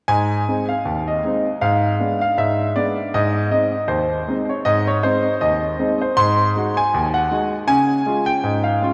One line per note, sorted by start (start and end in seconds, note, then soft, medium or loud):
0.08 0.41 G#2 medium
0.08 0.65 G#5 loud
0.48 0.69 G#3 soft
0.48 0.69 C4 soft
0.48 0.69 D#4 soft
0.69 0.99 F5 medium
0.85 1.18 D#2 medium
1.08 1.51 D#5 medium
1.24 1.45 G#3 soft
1.24 1.45 C4 soft
1.24 1.46 D#4 soft
1.61 1.94 G#2 medium
1.61 2.18 F5 medium
1.99 2.21 G#3 soft
1.99 2.20 B3 soft
1.99 2.21 D4 soft
2.21 2.38 F5 medium
2.37 2.70 G#2 medium
2.37 2.74 E5 medium
2.76 2.97 G#3 soft
2.76 2.97 B3 soft
2.76 2.97 D4 soft
2.76 3.12 D5 medium
3.14 3.46 G#2 medium
3.14 3.44 D#5 medium
3.51 3.72 G#3 soft
3.51 3.72 C4 soft
3.51 3.73 D#4 soft
3.51 3.82 D#5 medium
3.88 4.21 D#2 medium
3.88 4.36 C5 medium
4.28 4.48 G#3 soft
4.28 4.49 C4 soft
4.28 4.49 D#4 soft
4.49 4.66 C#5 medium
4.65 4.97 G#2 medium
4.65 4.86 D#5 loud
4.87 5.03 C#5 medium
5.03 5.24 G#3 soft
5.03 5.25 C4 soft
5.03 5.25 D#4 soft
5.03 5.39 C5 medium
5.41 5.73 D#2 medium
5.41 5.88 D#5 medium
5.79 6.00 G#3 soft
5.79 6.00 C4 soft
5.79 6.01 D#4 soft
6.01 6.17 C5 medium
6.17 6.49 G#2 medium
6.17 6.64 C6 loud
6.56 6.76 G#3 soft
6.56 6.76 D#4 soft
6.56 6.77 F#4 medium
6.77 7.07 G#5 medium
6.94 7.26 D#2 medium
7.14 7.57 F#5 medium
7.31 7.52 G#3 soft
7.31 7.52 D#4 medium
7.31 7.52 F#4 soft
7.68 8.00 C#3 medium
7.68 8.24 G#5 loud
8.06 8.27 G#3 soft
8.06 8.27 C#4 soft
8.06 8.28 F4 soft
8.26 8.63 G5 medium
8.43 8.76 G#2 medium
8.64 8.93 F5 medium
8.82 8.93 G#3 soft
8.82 8.93 C#4 soft
8.82 8.93 F4 medium